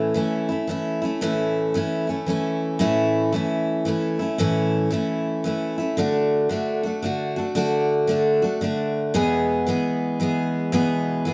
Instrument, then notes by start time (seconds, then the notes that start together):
steel-string acoustic guitar
Already playing: A2 E3 A3 C#4 E4
0.14 E3 A3 C#4 E4
0.49 A3 C#4 E4
0.67 E3 A3 C#4 E4
1.02 A3 C#4 E4
1.21 A2 E3 A3 C#4 E4
1.74 E3 A3 C#4 E4
2.07 A3 C#4 E4
2.26 E3 A3 C#4 E4
2.79 A2 E3 A3 C#4 E4
3.32 E3 A3 C#4 E4
3.85 E3 A3 C#4 E4
4.19 A3 C#4 E4
4.38 A2 E3 A3 C#4 E4
4.90 E3 A3 C#4 E4
5.44 E3 A3 C#4 E4
5.78 A3 C#4 E4
5.97 D3 A3 D4 F#4
6.49 D3 A3 D4 F#4
6.83 A3 D4 F#4
7.02 D3 A3 D4 F#4
7.36 A3 D4 F#4
7.55 D3 A3 D4 F#4
8.07 D3 A3 D4 F#4
8.42 A3 D4 F#4
8.61 D3 A3 D4 F#4
9.14 E2 B2 E3 G#3 B3 G#4
9.67 E3 G#3 B3 G#4
10.20 E3 G#3 B3 G#4
10.72 E2 B2 E3 G#3 B3 G#4
11.25 E3 G#3 B3 G#4